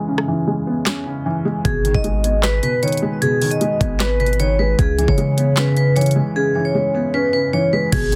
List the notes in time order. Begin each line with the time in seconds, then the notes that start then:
Already playing: C#3 E3 G#3 B3 C#4
0.08 C#3
0.18 cross-stick
0.28 E3
0.47 G#3
0.67 B3
0.86 C#4, snare, clap
1.06 C#3
1.26 E3
1.45 G#3
1.65 G#1 B2 G#4, kick, closed hi-hat
1.84 D#3, closed hi-hat
1.94 G#1 D#5, kick
2.04 G#3, closed hi-hat
2.24 B3, closed hi-hat
2.43 B4, snare, clap, closed hi-hat
2.63 B2 B4, closed hi-hat
2.83 D#3 C#5, closed hi-hat
2.88 closed hi-hat
2.92 closed hi-hat
2.97 closed hi-hat
3.02 G#3
3.22 B2 G#4, closed hi-hat
3.41 D#3, closed hi-hat, open hi-hat
3.51 D#5, closed hi-hat
3.61 G#3, closed hi-hat
3.81 G#1 B3, kick, closed hi-hat
4.00 B4, snare, clap, closed hi-hat
4.20 B2 B4, closed hi-hat
4.26 closed hi-hat
4.33 closed hi-hat
4.39 D#3 C#5, closed hi-hat
4.59 G#3 B4
4.79 C#2 C#3 G#4, kick, closed hi-hat
4.98 E3, closed hi-hat
5.08 C#3 C#5, kick
5.18 G#3, closed hi-hat
5.37 B3, closed hi-hat
5.57 C#4 B4, snare, clap, closed hi-hat
5.77 C#3 B4, closed hi-hat
5.96 E3 C#5, closed hi-hat
6.01 closed hi-hat
6.06 closed hi-hat
6.11 closed hi-hat
6.16 G#3
6.36 C#3 G#4
6.55 E3
6.65 C#5
6.75 G#3
6.94 B3
7.14 C#4 B4
7.33 C#3 B4
7.53 E3 C#5
7.73 G#3 B4
7.92 G#1 B2 G#4, kick, closed hi-hat, crash
8.12 D#3, closed hi-hat